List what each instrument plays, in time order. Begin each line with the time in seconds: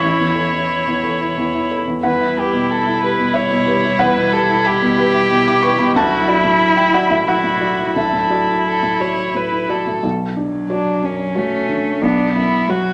Already playing: cello E3, felt piano E4, viola E4
0.00 felt piano A1 C#6, violin C#5
0.19 felt piano E2
0.35 felt piano A4 C#5
0.53 felt piano E4
0.87 felt piano E2
1.03 felt piano A4 C#5
1.21 felt piano E4
1.38 felt piano E2
1.55 felt piano E4
1.71 felt piano A4 C#5
1.87 felt piano E2
2.03 felt piano E2 F#5, cello G3, viola E4, violin B4
2.21 felt piano E4
2.37 felt piano G4 B4, violin G4
2.53 felt piano B2
2.70 violin A4
2.86 felt piano E4
3.02 felt piano G4 B4, violin B4
3.19 felt piano B2
3.33 felt piano E4 E5, violin C#5
3.51 felt piano B2
3.66 felt piano G4 B4
3.84 felt piano E4
3.99 felt piano E2 F#5, violin B4
4.17 felt piano B2
4.32 felt piano G4 B4, violin A4
4.49 felt piano E4
4.65 violin G4, felt piano B5
4.82 felt piano B2
4.98 felt piano G4 B4
5.14 felt piano E4
5.31 felt piano B2
5.47 felt piano E4 D6
5.62 felt piano G4 B4 C#6
5.79 felt piano B2 B5
5.95 felt piano D2 A5, cello F#3, viola E4, violin F#4
6.12 felt piano E4
6.27 violin E4, felt piano F#4 D5
6.44 felt piano A2
6.77 felt piano E4 G5
6.93 felt piano F#4 D5 F#5
7.10 felt piano A2 E5
7.26 cello F#3, felt piano E4 F#5, viola E4, violin F#4
7.43 felt piano A2
7.61 felt piano F#4 D5
7.79 felt piano E4
7.96 felt piano D2 E5, cello F#3, viola E4, violin A4
8.13 felt piano A2
8.30 felt piano F#4 D5
8.47 felt piano E4
8.66 violin A4
8.83 felt piano A2
9.00 felt piano F#4 D5, violin C#5
9.17 felt piano E4
9.35 felt piano A2, violin B4
9.52 felt piano E4
9.69 felt piano F#4 D5, violin A4
9.87 felt piano A2
10.03 felt piano B1
10.37 cello F#3, felt piano D4
10.70 violin D4, felt piano F#4 C#5
11.02 felt piano F#2, violin C#4
11.35 cello A3, felt piano F#4 C#5
11.69 felt piano D3
12.02 felt piano B1, cello B3, violin D4
12.36 felt piano F#2, violin E4
12.69 cello F#3, felt piano F#4 C#5, violin F#4